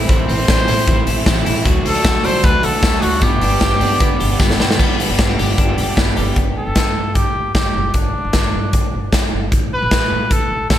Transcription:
Already playing: clean electric guitar C4 E4
0.08 upright bass A1, overdriven electric guitar A2 E3 A3 C4 E4, clean electric guitar E3, trumpet C5, kick, closed hi-hat, tambourine
0.28 upright bass A1, clean electric guitar C4, open hi-hat, tambourine
0.37 overdriven electric guitar A3 C4 E4
0.48 upright bass A1, clean electric guitar D4, kick, snare, closed hi-hat, tambourine
0.59 clean electric guitar E4
0.67 upright bass A2, overdriven electric guitar E3 A3 C4 E4, clean electric guitar C4, open hi-hat, tambourine
0.87 upright bass A1, clean electric guitar E3, kick, closed hi-hat, tambourine
1.06 upright bass A1, clean electric guitar E4, open hi-hat, tambourine
1.16 overdriven electric guitar A3 C4 E4
1.26 upright bass A1, overdriven electric guitar E3 A3 C4 E4, clean electric guitar E3, kick, snare, closed hi-hat, tambourine
1.46 upright bass A1, overdriven electric guitar E3 A3 C4 E4, clean electric guitar E4, open hi-hat, tambourine
1.65 upright bass D2, overdriven electric guitar D3 F#3 A3 D4, clean electric guitar F#3, kick, closed hi-hat, tambourine
1.85 upright bass D2, clean electric guitar C4, trumpet A4, open hi-hat, tambourine
1.94 overdriven electric guitar F#3 A3 D4, clean electric guitar D4
2.05 upright bass D2, clean electric guitar F#4, kick, snare, closed hi-hat, tambourine
2.24 overdriven electric guitar D3 F#3 A3 D4, upright bass D3, clean electric guitar D4, trumpet C5, open hi-hat, tambourine
2.43 upright bass D2, clean electric guitar A3, trumpet B4, kick, closed hi-hat, tambourine
2.63 upright bass D2, clean electric guitar F#4, trumpet A4, open hi-hat, tambourine
2.72 overdriven electric guitar F#3 A3 D4
2.82 upright bass D2, overdriven electric guitar D3 F#3 A3 D4, clean electric guitar A3, kick, snare, closed hi-hat, tambourine
3.01 upright bass D2, overdriven electric guitar D3 F#3 A3 D4, trumpet F#4, clean electric guitar F#4, open hi-hat, tambourine
3.20 upright bass G1, overdriven electric guitar G2 D3 G3 B3 D4, clean electric guitar B3, trumpet G4, kick, closed hi-hat, tambourine
3.41 upright bass G1, clean electric guitar D4, open hi-hat, tambourine
3.50 overdriven electric guitar G3 B3 D4
3.61 upright bass G1, clean electric guitar G4, kick, snare, closed hi-hat, tambourine
3.79 upright bass G2, overdriven electric guitar D3 G3 B3 D4, clean electric guitar D4, open hi-hat, tambourine
4.00 upright bass G1, clean electric guitar B3, kick, closed hi-hat, tambourine
4.20 upright bass G1, clean electric guitar G4, open hi-hat, tambourine
4.28 overdriven electric guitar G3 B3 D4
4.38 upright bass G1, overdriven electric guitar D3 G3 B3 D4, clean electric guitar B3, kick, snare, tambourine
4.51 snare
4.59 upright bass G1, overdriven electric guitar D3 G3 B3 D4, clean electric guitar G4, snare, tambourine
4.71 snare
4.78 upright bass G1, overdriven electric guitar G2 D3 G3 B3 D4, clean electric guitar B3 G4, kick, crash
4.99 clean electric guitar B3, open hi-hat
5.09 upright bass G1, overdriven electric guitar G2 D3 G3 B3 D4
5.19 upright bass G1, clean electric guitar C4, kick, snare, closed hi-hat
5.29 clean electric guitar D4
5.38 upright bass G1, overdriven electric guitar G2 D3 G3 B3 D4, clean electric guitar G4, open hi-hat
5.58 upright bass G1, clean electric guitar D4, kick, closed hi-hat
5.68 overdriven electric guitar G2 D3 G3 B3 D4
5.78 upright bass G1, clean electric guitar G4, open hi-hat
5.88 overdriven electric guitar G3 B3 D4
5.97 upright bass G1, clean electric guitar B3, kick, snare, closed hi-hat
6.16 upright bass G1, overdriven electric guitar D3 G3 B3 D4, clean electric guitar G4, open hi-hat
6.36 upright bass G1, kick, closed hi-hat
6.56 trumpet A4
6.67 upright bass G1
6.76 upright bass G1, kick, snare, closed hi-hat
6.96 upright bass G2
7.15 trumpet G4, kick, closed hi-hat
7.35 upright bass G1
7.54 upright bass G1, trumpet G4, kick, snare, closed hi-hat
7.75 upright bass F#1
7.94 upright bass G1, trumpet D4, kick, closed hi-hat
8.25 upright bass G1
8.33 upright bass G1, kick, snare, closed hi-hat
8.53 upright bass G2
8.73 kick, closed hi-hat
8.94 upright bass G1
9.13 upright bass G1, kick, snare, closed hi-hat
9.33 upright bass G1
9.52 upright bass A1, kick, closed hi-hat
9.73 trumpet B4
9.82 upright bass A1
9.91 upright bass A1, kick, snare, closed hi-hat
10.11 upright bass A2
10.31 trumpet A4, kick, closed hi-hat
10.51 upright bass A1
10.70 upright bass A1, trumpet A4, kick, snare, closed hi-hat

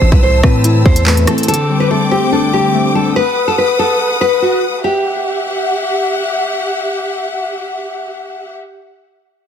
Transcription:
Already playing: synth keys A2, string section C4 A5 E6, nylon-string guitar C5
0.01 808-style bass A1, synth keys E3
0.12 808-style bass C2, nylon-string guitar B4, kick
0.23 synth keys A3, nylon-string guitar C5
0.43 808-style bass A2, synth keys C4, nylon-string guitar B4, kick, cross-stick
0.64 synth keys E4, closed hi-hat
0.85 808-style bass E2, synth keys C4, nylon-string guitar C5, kick
0.96 closed hi-hat
1.06 synth keys A3, nylon-string guitar B4, clap
1.17 closed hi-hat
1.27 synth keys E3, nylon-string guitar A4, cross-stick, closed hi-hat
1.38 closed hi-hat
1.43 closed hi-hat
1.48 synth keys D3, nylon-string guitar A4, string section G5 D6, closed hi-hat
1.54 closed hi-hat
1.70 synth keys G3
1.80 nylon-string guitar B4
1.90 synth keys A3, nylon-string guitar A4
2.11 synth keys C4, nylon-string guitar G4
2.32 synth keys D4, nylon-string guitar A4
2.53 synth keys C4, nylon-string guitar G4
2.75 synth keys A3
2.95 synth keys G3, nylon-string guitar A4
3.16 nylon-string guitar B4, string section B4 F#5 D#6
3.48 nylon-string guitar A4
3.58 nylon-string guitar B4
3.79 nylon-string guitar A4
4.21 nylon-string guitar B4
4.42 nylon-string guitar F#4
4.84 nylon-string guitar G4, string section G4 E5 F#5

